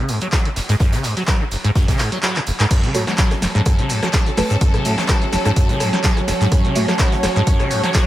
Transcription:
Already playing: acid bass C#3
0.08 acid bass G#2, closed hi-hat, open hi-hat
0.21 acid bass F#3, closed hi-hat
0.32 acid bass F#3, kick, snare, clap, closed hi-hat
0.45 acid bass B2, closed hi-hat
0.56 acid bass F#1, snare, closed hi-hat, open hi-hat
0.69 acid bass G#2, snare, closed hi-hat
0.80 acid bass F#2, kick, snare, closed hi-hat
0.92 acid bass C#3, snare, closed hi-hat
1.03 acid bass G#2, snare, closed hi-hat, open hi-hat
1.16 acid bass F#3, snare, closed hi-hat
1.27 acid bass F#3, kick, snare, clap, closed hi-hat
1.41 acid bass B2
1.51 acid bass F#1, snare, closed hi-hat, open hi-hat
1.64 acid bass G#2, closed hi-hat
1.75 acid bass F#2, kick, snare, closed hi-hat
1.88 acid bass C#3, kick, snare, closed hi-hat
1.99 acid bass G#2, snare, clap, closed hi-hat, open hi-hat
2.12 acid bass F#3, snare, closed hi-hat
2.23 acid bass F#3, snare, clap, closed hi-hat
2.36 acid bass B2, clap, closed hi-hat
2.47 acid bass F#1, closed hi-hat, open hi-hat
2.59 acid bass G#2, snare, clap, closed hi-hat
2.71 acid bass F#2, string section F#3 C#4 A4, ambient pad F#4, kick, closed hi-hat, crash, shaker
2.83 acid bass C#3, closed hi-hat, shaker
2.94 acid bass G#2, synth stab A3 F#4 C#5, ambient pad C#5, cross-stick, closed hi-hat, open hi-hat, shaker
3.07 acid bass F#3, snare, closed hi-hat, shaker
3.18 acid bass F#3, kick, snare, clap, closed hi-hat, shaker
3.30 acid bass B2, cross-stick, snare, closed hi-hat, shaker
3.35 ambient pad A5
3.42 acid bass F#1, snare, closed hi-hat, open hi-hat, shaker
3.55 acid bass G#2, snare, closed hi-hat, shaker
3.65 acid bass F#2, kick, cross-stick, closed hi-hat, shaker
3.79 acid bass C#3, closed hi-hat, shaker
3.89 acid bass G#2, closed hi-hat, open hi-hat, shaker
4.03 acid bass F#3, cross-stick, snare, closed hi-hat, shaker
4.13 acid bass F#3, kick, snare, clap, closed hi-hat, shaker
4.26 acid bass B2, closed hi-hat, shaker
4.37 acid bass F#1, synth stab A3 F#4 B4, cross-stick, snare, open hi-hat, shaker
4.50 acid bass G#2, closed hi-hat, shaker
4.61 acid bass F#2, kick, closed hi-hat, shaker
4.74 acid bass C#3, cross-stick, closed hi-hat, shaker
4.85 acid bass G#2, synth stab A3 F#4 E5, closed hi-hat, open hi-hat, shaker
4.98 acid bass F#3, snare, closed hi-hat, shaker
5.08 acid bass F#3, kick, cross-stick, snare, clap, closed hi-hat, shaker
5.22 acid bass B2, closed hi-hat, shaker
5.32 acid bass F#1, snare, closed hi-hat, open hi-hat, shaker
5.45 acid bass G#2, cross-stick, snare, closed hi-hat, shaker
5.56 acid bass F#2, kick, closed hi-hat, shaker
5.69 acid bass C#3, closed hi-hat, shaker
5.80 acid bass G#2, cross-stick, closed hi-hat, open hi-hat, shaker
5.93 acid bass F#3, snare, closed hi-hat, shaker
6.04 acid bass F#3, kick, snare, clap, closed hi-hat, shaker
6.17 acid bass B2, cross-stick, closed hi-hat, shaker
6.28 acid bass F#1, snare, closed hi-hat, open hi-hat, shaker
6.41 acid bass G#2, snare, closed hi-hat, shaker
6.52 acid bass F#2, string section C#5, kick, cross-stick, closed hi-hat, shaker
6.65 acid bass C#3, closed hi-hat, shaker
6.75 acid bass G#2, synth stab A3 F#4 C#5, closed hi-hat, open hi-hat, shaker
6.88 acid bass F#3, cross-stick, snare, closed hi-hat, shaker
6.99 acid bass F#3, kick, snare, clap, closed hi-hat, shaker
7.12 acid bass B2, snare, closed hi-hat, shaker
7.23 acid bass F#1, cross-stick, snare, closed hi-hat, open hi-hat, shaker
7.36 acid bass G#2, snare, closed hi-hat, shaker
7.47 acid bass F#2, kick, closed hi-hat, shaker
7.60 acid bass C#3, cross-stick, closed hi-hat, shaker
7.71 acid bass G#2, closed hi-hat, open hi-hat, shaker
7.83 acid bass F#3, snare, closed hi-hat, shaker
7.94 acid bass F#3, kick, cross-stick, snare, clap, closed hi-hat, shaker

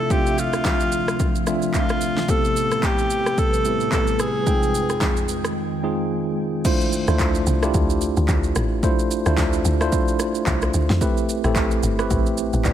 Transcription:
Already playing: ambient pad D2 C3 F3 E5, tine electric piano A3 C4 D4 E4 F4, alto saxophone A4
0.10 tine electric piano A3 C4 D4 F4 E5, alto saxophone G4, kick, shaker
0.26 shaker
0.38 alto saxophone F4, shaker
0.53 cross-stick, shaker
0.65 kick, snare, clap, shaker
0.80 shaker
0.92 shaker
1.08 cross-stick, shaker
1.20 kick, shaker
1.35 shaker
1.47 tine electric piano A3 C4 D4 F4 E5, cross-stick, shaker
1.62 shaker
1.74 alto saxophone F4, kick, clap, shaker
1.89 cross-stick, shaker
2.01 shaker
2.17 snare
2.28 ambient pad A2 C3 G3 B4, tine electric piano A3 B3 C4 E4 G4, alto saxophone A4, kick, shaker
2.45 shaker
2.56 shaker
2.71 cross-stick, shaker
2.83 alto saxophone G4, kick, clap, shaker
2.98 shaker
3.10 shaker
3.26 cross-stick, shaker
3.38 alto saxophone A4, kick, shaker
3.54 shaker
3.65 tine electric piano A3 B3 C4 E4 G4, shaker
3.80 shaker
3.92 alto saxophone A4, kick, clap, shaker
4.07 shaker
4.19 alto saxophone G#4, cross-stick, shaker
4.47 ambient pad F2 D#3 G#3 G5, tine electric piano G#3 C4 D#4 F4 G5, kick, shaker
4.63 shaker
4.75 shaker
4.89 cross-stick, shaker
5.01 kick, snare, clap, shaker
5.17 shaker
5.28 shaker
5.45 cross-stick, shaker
5.83 tine electric piano G#3 C4 D#4 F4 G#4
6.65 tine electric piano A3 D4 E4 F4 C5, kick, crash, shaker
6.81 shaker
6.93 shaker
7.08 log drum bass D2, tine electric piano A3 D4 E4 F4 C5, cross-stick, shaker
7.19 kick, clap, shaker
7.35 shaker
7.47 log drum bass C2, shaker
7.62 tine electric piano A3 D4 E4 F4 G4, cross-stick, shaker
7.74 log drum bass D2, kick, shaker
7.90 shaker
8.01 shaker
8.17 log drum bass D2, shaker
8.28 log drum bass D2, kick, clap, shaker
8.43 shaker
8.55 log drum bass A1, cross-stick, shaker
8.83 tine electric piano A3 D4 E4 F4 C5, kick, shaker
8.99 shaker
9.11 shaker
9.26 log drum bass D2, tine electric piano A3 D4 E4 F4 C5, cross-stick, shaker
9.37 kick, snare, clap, shaker
9.53 shaker
9.65 log drum bass D2, shaker
9.81 tine electric piano A3 D4 E4 F4 C5, cross-stick, shaker
9.92 kick, shaker
10.08 shaker
10.19 cross-stick, shaker
10.35 shaker
10.47 log drum bass C2, kick, clap, shaker
10.62 cross-stick, shaker
10.74 log drum bass D2, shaker
10.90 log drum bass F2, snare
11.01 tine electric piano A3 C4 E4 G4 B4, kick, shaker
11.17 shaker
11.29 shaker
11.44 log drum bass A1, tine electric piano A3 C4 E4 G4 A4, cross-stick, shaker
11.56 kick, clap, shaker
11.71 shaker
11.83 log drum bass G1, shaker
11.99 tine electric piano A3 C4 E4 G4 B4, cross-stick, shaker
12.10 log drum bass A1, kick, shaker
12.26 shaker
12.38 shaker
12.53 log drum bass A1, shaker
12.65 log drum bass A1, tine electric piano B4 D5, kick, clap, shaker

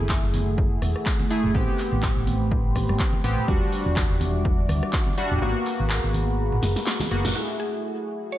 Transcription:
Already playing: synth keys A3 E4 G#4, analog synth pad A3 F#5 G#5 E6
0.00 fingered electric bass F#1
0.09 kick, clap
0.23 fingered electric bass F#1
0.34 open hi-hat, high conga
0.58 kick
0.82 fingered electric bass E1, cross-stick, open hi-hat, high conga
0.96 cross-stick
1.06 kick, clap
1.20 high conga
1.30 synth keys A3 E4 G#4, open hi-hat
1.43 fingered electric bass F#1, low conga
1.54 fingered electric bass A1, synth keys B3 C4 G4, analog synth pad G5 B5 C6, kick, high conga
1.78 clap, open hi-hat
1.92 fingered electric bass A1, high conga
2.03 kick, clap
2.17 fingered electric bass A1
2.27 open hi-hat, high conga
2.51 kick
2.76 kick, cross-stick, open hi-hat, high conga
2.89 fingered electric bass A2, cross-stick
2.99 kick, clap
3.13 high conga
3.24 fingered electric bass A1, synth keys B3 C4 G4, open hi-hat
3.38 low conga
3.48 fingered electric bass E1, synth keys G3 D4 F#4, analog synth pad G3 E5 F#5 D6, kick, high conga
3.72 open hi-hat
3.86 fingered electric bass E1, high conga
3.96 kick, clap
4.10 fingered electric bass E1
4.21 open hi-hat, high conga
4.45 kick
4.69 fingered electric bass D2, cross-stick, open hi-hat, high conga
4.83 cross-stick
4.93 kick, clap
5.07 high conga
5.17 synth keys G3 D4 F#4, open hi-hat
5.31 fingered electric bass E1, low conga
5.42 fingered electric bass G#1, synth keys A#3 B3 F#4, analog synth pad G#4 F#5 A#5 B5, high conga
5.65 clap, open hi-hat
5.80 fingered electric bass G#1, high conga
5.90 clap
6.04 fingered electric bass G#1
6.14 open hi-hat, high conga
6.52 low conga
6.62 fingered electric bass F#1, snare, open hi-hat, high conga
6.76 snare
6.86 snare, clap
7.00 snare, high conga
7.11 fingered electric bass F#1, synth keys A#3 B3 F#4, open hi-hat
7.25 snare, low conga
7.35 synth keys A3 E4 F#4 G#4, analog synth pad F#4 E5 G#5, synth pluck F#4
7.60 synth pluck G#4
8.32 synth pluck C#5

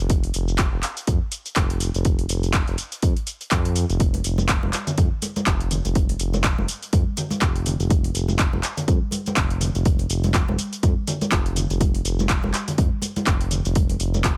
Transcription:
0.00 analog synth bass F1
0.10 kick, closed hi-hat, shaker
0.24 open hi-hat
0.34 analog synth bass F1, open hi-hat, shaker
0.48 shaker
0.58 kick, clap, closed hi-hat, shaker
0.73 analog synth bass F1
0.83 clap, open hi-hat, shaker
0.97 closed hi-hat, shaker
1.07 analog synth bass F2, kick, closed hi-hat, shaker
1.32 open hi-hat, shaker
1.46 closed hi-hat, shaker
1.56 analog synth bass F1, kick, clap, closed hi-hat, shaker
1.70 closed hi-hat
1.80 open hi-hat, shaker
1.94 analog synth bass F1, closed hi-hat, shaker
2.05 kick, closed hi-hat, shaker
2.19 open hi-hat
2.29 analog synth bass F1, open hi-hat, shaker
2.43 closed hi-hat, shaker
2.54 kick, clap, closed hi-hat, shaker
2.68 analog synth bass F1, closed hi-hat
2.78 open hi-hat, shaker
2.92 closed hi-hat, shaker
3.02 analog synth bass F2, kick, closed hi-hat, shaker
3.16 closed hi-hat
3.27 open hi-hat, shaker
3.41 closed hi-hat, shaker
3.51 analog synth bass F2, kick, clap, closed hi-hat, shaker
3.65 closed hi-hat
3.76 open hi-hat, shaker
3.90 analog synth bass F1, closed hi-hat, shaker
4.00 kick, closed hi-hat, high conga, shaker
4.14 open hi-hat, muted conga
4.24 analog synth bass F1, open hi-hat, shaker
4.38 muted conga, high conga, shaker
4.49 kick, clap, closed hi-hat, shaker
4.63 analog synth bass F1, muted conga, high conga
4.73 clap, open hi-hat, shaker
4.87 closed hi-hat, low conga, shaker
4.98 analog synth bass F2, kick, closed hi-hat, muted conga, high conga, shaker
5.22 open hi-hat, muted conga, high conga, shaker
5.36 closed hi-hat, high conga, shaker
5.47 analog synth bass F1, kick, clap, closed hi-hat, shaker
5.61 closed hi-hat
5.71 open hi-hat, low conga, shaker
5.85 analog synth bass F1, closed hi-hat, muted conga, shaker
5.95 kick, closed hi-hat, high conga, shaker
6.09 open hi-hat, muted conga
6.20 analog synth bass F1, open hi-hat, shaker
6.34 muted conga, high conga, shaker
6.44 kick, clap, closed hi-hat, shaker
6.58 analog synth bass F1, muted conga, high conga
6.68 open hi-hat, shaker
6.83 closed hi-hat, shaker
6.93 analog synth bass F2, kick, closed hi-hat, muted conga, high conga, shaker
7.17 open hi-hat, muted conga, low conga, shaker
7.31 closed hi-hat, high conga, shaker
7.41 analog synth bass F1, kick, clap, closed hi-hat, muted conga, high conga, shaker
7.56 closed hi-hat
7.66 open hi-hat, low conga, shaker
7.80 analog synth bass F1, closed hi-hat, muted conga, shaker
7.90 kick, closed hi-hat, high conga, shaker
8.04 open hi-hat, muted conga
8.14 analog synth bass F1, open hi-hat, shaker
8.28 muted conga, high conga, shaker
8.39 kick, clap, closed hi-hat, shaker
8.53 analog synth bass F1, muted conga, high conga
8.63 clap, open hi-hat, shaker
8.77 closed hi-hat, low conga, shaker
8.88 analog synth bass F2, kick, closed hi-hat, muted conga, high conga, shaker
9.11 open hi-hat, muted conga, high conga, shaker
9.26 closed hi-hat, high conga, shaker
9.37 analog synth bass F1, kick, clap, closed hi-hat, shaker
9.50 closed hi-hat
9.61 open hi-hat, low conga, shaker
9.75 analog synth bass F1, closed hi-hat, muted conga, shaker
9.85 kick, closed hi-hat, high conga, shaker
9.99 open hi-hat, muted conga
10.10 analog synth bass F1, open hi-hat, shaker
10.24 closed hi-hat, muted conga, high conga, shaker
10.34 kick, clap, closed hi-hat, shaker
10.48 analog synth bass F1, muted conga, high conga
10.59 open hi-hat, shaker
10.73 closed hi-hat, shaker
10.83 analog synth bass F2, kick, closed hi-hat, muted conga, high conga, shaker
11.07 open hi-hat, muted conga, low conga, shaker
11.21 closed hi-hat, high conga, shaker
11.31 analog synth bass F1, kick, clap, closed hi-hat, muted conga, high conga, shaker
11.46 closed hi-hat
11.56 open hi-hat, low conga, shaker
11.70 analog synth bass F1, closed hi-hat, muted conga, shaker
11.81 kick, closed hi-hat, high conga, shaker
11.95 open hi-hat, muted conga
12.05 analog synth bass F1, open hi-hat, shaker
12.19 muted conga, high conga, shaker
12.29 kick, clap, closed hi-hat, shaker
12.43 analog synth bass F1, muted conga, high conga
12.54 clap, open hi-hat, shaker
12.68 closed hi-hat, low conga, shaker
12.78 analog synth bass F2, kick, closed hi-hat, muted conga, high conga, shaker
13.02 open hi-hat, muted conga, high conga, shaker
13.16 closed hi-hat, high conga, shaker
13.27 analog synth bass F1, kick, clap, closed hi-hat, shaker
13.41 closed hi-hat
13.51 open hi-hat, low conga, shaker
13.65 analog synth bass F1, closed hi-hat, muted conga, shaker
13.75 kick, closed hi-hat, high conga, shaker
13.89 open hi-hat, muted conga
14.00 analog synth bass F1, open hi-hat, shaker
14.14 muted conga, high conga, shaker
14.24 kick, clap, closed hi-hat, shaker

